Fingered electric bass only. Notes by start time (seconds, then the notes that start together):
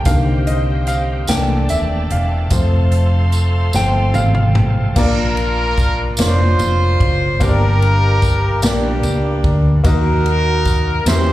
0.06 C2
1.29 C2
1.69 D#1
2.11 E1
2.51 F1
3.74 G1
4.15 G#1
4.56 A1
4.96 A#1
6.19 F1
6.60 F1
7.01 F#1
7.41 G1
8.63 A#1
9.04 C#2
9.44 D2
9.85 D#2
11.06 E2